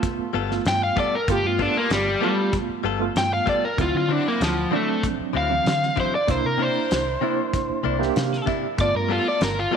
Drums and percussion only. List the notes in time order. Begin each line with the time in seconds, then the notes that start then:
0.03 kick, closed hi-hat
0.51 snare
0.65 snare, closed hi-hat
0.97 kick
1.28 kick, closed hi-hat
1.59 kick
1.90 snare, closed hi-hat
2.53 kick, closed hi-hat
3.16 snare, closed hi-hat
3.47 kick
3.78 kick, closed hi-hat
4.41 snare, closed hi-hat
5.03 kick, closed hi-hat
5.66 snare, closed hi-hat
5.83 snare
5.97 kick
6.28 kick, closed hi-hat
6.91 snare, closed hi-hat
7.54 kick, closed hi-hat
8.02 snare
8.16 snare, closed hi-hat
8.33 snare
8.47 kick
8.78 kick, closed hi-hat
9.41 snare, closed hi-hat